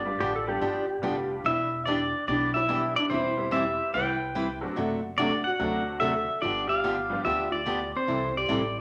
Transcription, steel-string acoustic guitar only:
0.20 0.32 D3 medium
0.20 0.33 F3 medium
0.20 0.32 B3 medium
0.20 0.33 D4 medium
0.20 0.33 G4 medium
0.61 0.84 D3 medium
0.61 0.84 F3 medium
0.61 0.84 B3 medium
0.61 0.84 D4 medium
0.61 0.84 G4 medium
1.03 1.15 D3 medium
1.03 1.15 F3 medium
1.03 1.15 B3 medium
1.03 1.15 D4 medium
1.03 1.15 G4 medium
1.45 1.67 E3 medium
1.45 1.68 B3 soft
1.45 1.67 D4 medium
1.45 1.68 G4 medium
1.87 1.98 E3 medium
1.87 1.99 B3 medium
1.87 1.99 D4 medium
1.87 1.99 G4 medium
2.28 2.50 E3 medium
2.28 2.50 B3 medium
2.28 2.50 D4 medium
2.28 2.50 G4 medium
2.68 2.81 E3 medium
2.68 2.81 B3 medium
2.68 2.81 D4 medium
2.68 2.81 G4 medium
3.10 3.33 E3 medium
3.10 3.32 G3 medium
3.10 3.33 C4 medium
3.10 3.33 E4 medium
3.10 3.33 B4 medium
3.51 3.63 E3 medium
3.51 3.63 G3 medium
3.51 3.64 C4 medium
3.51 3.64 E4 medium
3.51 3.64 B4 medium
3.93 4.16 E3 medium
3.93 4.16 G3 medium
3.93 4.16 C4 medium
3.93 4.16 E4 medium
3.93 4.16 B4 medium
4.35 4.47 E3 medium
4.35 4.47 G3 medium
4.35 4.47 C4 medium
4.35 4.47 E4 medium
4.35 4.47 B4 medium
4.76 4.98 C3 medium
4.76 4.99 F#3 soft
4.76 4.99 A3 medium
4.76 4.99 D4 medium
4.76 4.99 F#4 medium
5.18 5.30 C3 medium
5.18 5.30 F#3 medium
5.18 5.30 A3 medium
5.18 5.30 D4 medium
5.18 5.30 F#4 medium
5.60 5.82 C3 medium
5.60 5.82 F#3 medium
5.60 5.82 A3 medium
5.60 5.82 D4 medium
5.60 5.82 F#4 medium
6.01 6.13 C3 medium
6.01 6.13 F#3 medium
6.01 6.13 A3 medium
6.01 6.13 D4 medium
6.01 6.13 F#4 medium
6.43 6.65 D3 medium
6.43 6.65 F3 medium
6.43 6.65 B3 medium
6.43 6.65 D4 medium
6.43 6.65 G4 medium
6.84 6.96 D3 medium
6.84 6.96 F3 medium
6.84 6.96 B3 medium
6.84 6.96 D4 medium
6.84 6.96 G4 medium
7.25 7.47 D3 medium
7.25 7.48 F3 medium
7.25 7.48 B3 medium
7.25 7.48 D4 medium
7.25 7.48 G4 medium
7.66 7.78 D3 medium
7.66 7.78 F3 medium
7.66 7.78 B3 medium
7.66 7.79 D4 medium
7.66 7.79 G4 medium
8.07 8.30 C3 medium
8.07 8.30 E3 soft
8.07 8.30 G3 soft
8.07 8.30 C4 medium
8.07 8.30 E4 medium
8.07 8.30 A4 medium
8.48 8.61 C3 medium
8.48 8.61 E3 medium
8.48 8.61 G3 medium
8.48 8.61 C4 medium
8.48 8.61 E4 medium
8.48 8.61 A4 medium

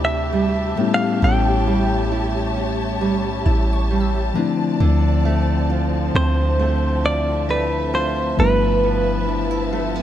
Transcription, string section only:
0.00 0.74 C4 medium
0.00 4.32 G4 medium
0.00 4.32 E5 medium
0.00 8.35 A5 medium
0.77 4.32 C#5 medium
4.35 8.35 F3 medium
4.35 8.34 C4 medium
4.35 6.13 D5 medium
6.15 10.02 E5 medium
8.39 10.02 F3 medium
8.39 10.02 B4 medium
8.39 10.02 A5 medium

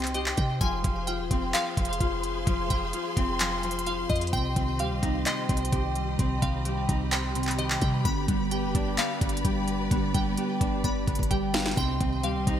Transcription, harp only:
0.00 1.30 C4 medium
0.00 2.15 D#4 loud
0.00 0.14 G4 medium
0.15 2.50 G4 loud
0.61 0.83 F3 medium
0.84 1.53 F3 medium
1.08 2.00 F4 medium
1.31 3.17 C4 medium
1.54 1.76 F3 medium
1.77 2.46 F3 medium
2.01 2.93 F4 medium
2.47 2.69 F3 medium
2.70 3.39 F3 medium
2.93 3.86 F4 medium
3.17 4.33 C4 loud
3.40 3.63 F3 medium
3.64 4.38 F3 medium
3.86 6.39 F4 medium
4.33 4.56 C4 medium
4.56 5.26 C4 medium
4.79 5.72 G4 medium
5.03 6.88 D#4 medium
5.26 5.49 C4 medium
5.49 6.19 C4 medium
5.72 6.65 G4 medium
6.19 6.42 C4 medium
6.42 7.12 C4 medium
6.65 7.58 G4 medium
6.89 8.81 D#4 medium
7.12 7.35 C4 medium
7.35 8.11 C4 medium
7.59 8.51 G4 loud
8.05 8.28 B3 medium
8.28 8.97 B3 medium
8.51 9.44 G4 medium
8.75 10.61 D4 loud
8.98 9.21 B3 medium
9.22 9.91 B3 medium
9.45 10.38 G4 medium
9.91 10.14 B3 medium
10.15 10.84 B3 medium
10.38 11.30 G4 medium
10.61 12.53 D4 loud
10.85 11.07 B3 medium
11.07 11.83 B3 medium
11.31 12.23 G4 medium
11.77 12.00 C4 medium
12.00 12.60 C4 medium
12.24 12.60 G4 medium
12.47 12.60 D#4 loud

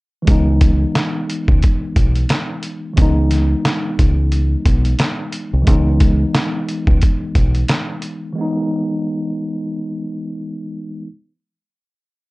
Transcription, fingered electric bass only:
0.28 0.84 C#2 loud
1.48 1.60 C#2 medium
1.96 2.24 B1 medium
2.98 3.53 C#2 loud
3.99 4.55 C#2 medium
4.66 4.94 B1 medium
5.53 5.65 C2 medium
5.67 6.23 C#2 loud
6.87 6.99 C#2 medium
7.35 7.63 B1 medium

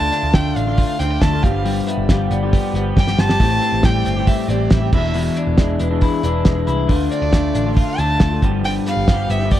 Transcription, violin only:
0.00 0.36 A5 loud
0.34 0.58 G5 loud
0.56 1.01 F5 loud
0.99 1.23 G5 loud
1.22 1.44 A5 loud
1.43 1.87 F5 medium
2.98 3.21 G5 loud
3.20 3.87 A5 loud
3.85 4.29 G5 loud
4.27 4.51 E5 medium
4.49 4.72 D5 medium
4.70 4.92 E5 medium
4.93 5.33 E5 medium
7.11 7.73 D5 loud
7.77 8.00 F5 loud
7.99 8.42 A5 loud
8.65 8.75 G5 loud
8.88 9.32 F5 loud
9.30 9.53 E5 loud
9.52 9.60 D5 medium

